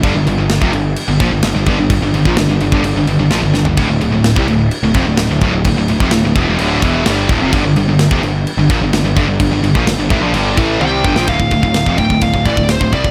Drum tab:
CC |x-x-x-x-x-x-x-x-|x-x-x-x-x-x-x---|x-x-x-x-x-x-x-x-|x-x-x-x-x-x-x-x-|
RD |----------------|----------------|----------------|----------------|
SD |----o-------o---|----o-------o-o-|----o-------o---|----o-------o---|
T1 |----------------|----------------|----------------|----------------|
FT |----------------|---------------o|----------------|----------------|
BD |o----o----o---o-|o--o---o--------|o----o----o---o-|o--o--o---o---o-|

CC |x-x-x-x-x-x-x-x-|x-x-x-x-x-x-----|----------------|
RD |----------------|----------------|x-x-x-x-x-x-x-x-|
SD |----o-------o---|----o----------o|----o-------o---|
T1 |----------------|------------o---|----------------|
FT |----------------|----------------|----------------|
BD |o----o----o---o-|o--o--o---o---o-|oooo-ooooooo-ooo|